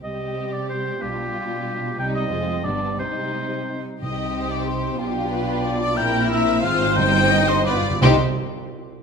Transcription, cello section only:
\new Staff \with { instrumentName = "Cello section" } { \clef bass \time 3/4 \key c \minor \tempo 4 = 181 c2. | b,2. | c4 f,4 g,4 | c2~ c8 r8 |
c2. | b,2. | bes,2 aes,4 | g,2~ g,8 r8 |
c8 r2 r8 | }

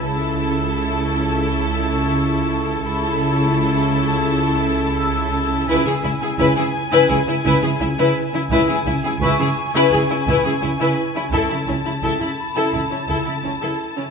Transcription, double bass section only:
\new Staff \with { instrumentName = "Double bass section" } { \clef bass \time 4/4 \key a \lydian \tempo 4 = 85 cis,1 | cis,1 | cis,16 r16 cis,16 r16 cis,16 r8. cis,16 r16 cis,16 r16 cis,16 r8. | cis,16 r16 cis,16 r16 cis,16 r8. cis,16 r16 cis,16 r16 cis,16 r8. |
cis,16 r16 cis,16 r16 cis,16 r8. cis,16 r16 cis,16 r16 cis,16 r8. | }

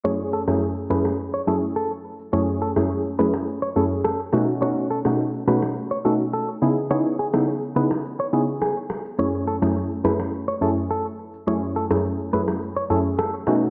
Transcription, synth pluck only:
\new Staff \with { instrumentName = "Synth pluck" } { \time 4/4 \key fis \dorian \tempo 4 = 105 <fis, a cis' e' gis'>8. <fis, a cis' e' gis'>16 r8 <fis, a cis' e' gis'>16 r8. <fis, a cis' e' gis'>16 r4 r16 | <fis, a cis' e' gis'>8. <fis, a cis' e' gis'>16 r8 <fis, a cis' e' gis'>16 r8. <fis, a cis' e' gis'>16 r8. <b, a cis' dis' fis'>8 | <b, a cis' dis' fis'>8. <b, a cis' dis' fis'>16 r8 <b, a cis' dis' fis'>16 r8. <b, a cis' dis' fis'>16 r8. <cis b dis' e' gis'>8 | <cis b dis' e' gis'>8. <cis b dis' e' gis'>16 r8 <cis b dis' e' gis'>16 r8. <cis b dis' e' gis'>16 r4 r16 |
<fis, a cis' e' gis'>8. <fis, a cis' e' gis'>16 r8 <fis, a cis' e' gis'>16 r8. <fis, a cis' e' gis'>16 r4 r16 | <fis, a cis' e' gis'>8. <fis, a cis' e' gis'>16 r8 <fis, a cis' e' gis'>16 r8. <fis, a cis' e' gis'>16 r8. <b, a cis' dis' fis'>8 | }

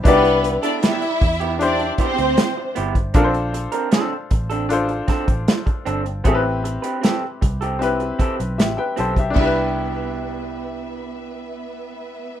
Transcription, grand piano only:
\new Staff \with { instrumentName = "Grand piano" } { \time 4/4 \key c \major \tempo 4 = 77 << { r1 | r1 | r2. <g' e''>16 <b' g''>16 <c'' a''>16 <g' e''>16~ | <g' e''>16 r2. r8. | } \\ { <d' e' g' d''>4. r8 <d' e' g' c''>4. r8 | <d' f' a' bes' c''>4. r8 <d' f' a' c''>4. r8 | <c' e' g' a' b'>4. r8 <c' e' g' b'>4. r8 | <d' e' g' b'>1 | } >> }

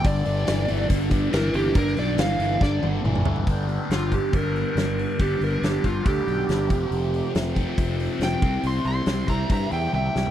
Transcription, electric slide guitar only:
\new Staff \with { instrumentName = "Electric slide guitar" } { \time 4/4 \key g \mixolydian \tempo 4 = 139 d''2 r4 bes'8 g'8 | bes'8 d''8 f''4 d''8 r4. | r4 f'8 g'8 bes'2 | g'8 bes'8 g'8 f'8 g'2~ |
g'4 r2 g''4 | c'''8 c'''4 bes''8 bes''8 g''8 g''4 | }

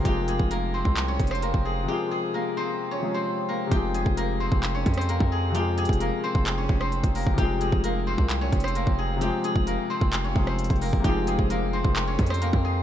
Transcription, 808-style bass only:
\new Staff \with { instrumentName = "808-style bass" } { \clef bass \time 4/4 \key f \minor \tempo 4 = 131 f,,8. f,,4 c,8. f,,8. f,,8. | r1 | f,,8. f,,4 f,,8. f,8. f,8.~ | f,8. f,,8 r8 f,,8. f,,8. f,,8 f,,16 |
f,,8. f,,4 c,8. f,,8. f,,8.~ | f,,16 r8 f,,8 r8 f,,8. f,,8. f,,8 f,,16 | f,,8. f,,4 f,,8. f,8. f,8. | }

